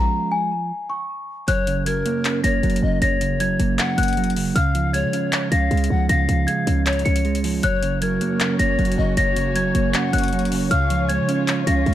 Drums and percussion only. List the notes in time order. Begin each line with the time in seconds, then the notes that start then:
1.48 closed hi-hat
1.67 closed hi-hat
1.86 closed hi-hat
2.06 closed hi-hat
2.25 clap, closed hi-hat
2.44 closed hi-hat
2.63 closed hi-hat
2.70 closed hi-hat
2.76 closed hi-hat
3.02 closed hi-hat
3.21 closed hi-hat
3.40 closed hi-hat
3.60 closed hi-hat
3.79 clap, closed hi-hat
3.98 closed hi-hat
4.03 closed hi-hat
4.08 closed hi-hat
4.13 closed hi-hat
4.17 closed hi-hat
4.24 closed hi-hat
4.30 closed hi-hat
4.36 open hi-hat
4.56 closed hi-hat
4.75 closed hi-hat
4.94 closed hi-hat
5.13 closed hi-hat
5.33 clap, closed hi-hat
5.52 closed hi-hat
5.71 closed hi-hat
5.77 closed hi-hat
5.84 closed hi-hat
6.09 closed hi-hat
6.29 closed hi-hat
6.48 closed hi-hat
6.67 closed hi-hat
6.86 clap, closed hi-hat
6.93 closed hi-hat
6.99 closed hi-hat
7.06 closed hi-hat
7.16 closed hi-hat
7.25 closed hi-hat
7.35 closed hi-hat
7.44 open hi-hat
7.63 closed hi-hat
7.83 closed hi-hat
8.02 closed hi-hat
8.21 closed hi-hat
8.40 clap, closed hi-hat
8.60 closed hi-hat
8.79 closed hi-hat
8.85 closed hi-hat
8.92 closed hi-hat
9.17 closed hi-hat
9.36 closed hi-hat
9.56 closed hi-hat
9.75 closed hi-hat
9.94 clap, closed hi-hat
10.13 closed hi-hat
10.18 closed hi-hat
10.23 closed hi-hat
10.28 closed hi-hat
10.33 closed hi-hat
10.39 closed hi-hat
10.45 closed hi-hat
10.52 open hi-hat
10.71 closed hi-hat
10.90 closed hi-hat
11.09 closed hi-hat
11.29 closed hi-hat
11.48 clap, closed hi-hat
11.67 closed hi-hat
11.86 closed hi-hat